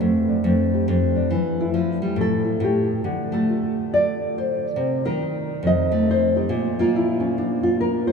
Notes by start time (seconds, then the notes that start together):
Already playing: D4
0.01 F2 A3
0.29 D4
0.44 F2 A3
0.74 G4
0.88 F2
1.16 D4
1.31 E3
1.60 E4
1.74 F3
2.02 G3
2.16 A2
2.21 A4
2.45 E4
2.60 A2
2.64 G4
3.04 D3
3.32 A3 A4
3.49 F4
3.94 D5
4.38 C5
4.76 C3
5.05 D#3 A#4
5.22 D#4
5.63 F2
5.67 D#5
5.92 A3
6.11 C5
6.35 D#4 G4 C5
6.49 A#2
6.79 A#3 F4
6.96 E4
7.20 C#4
7.38 D4
7.63 F4
7.81 A#4
8.07 C5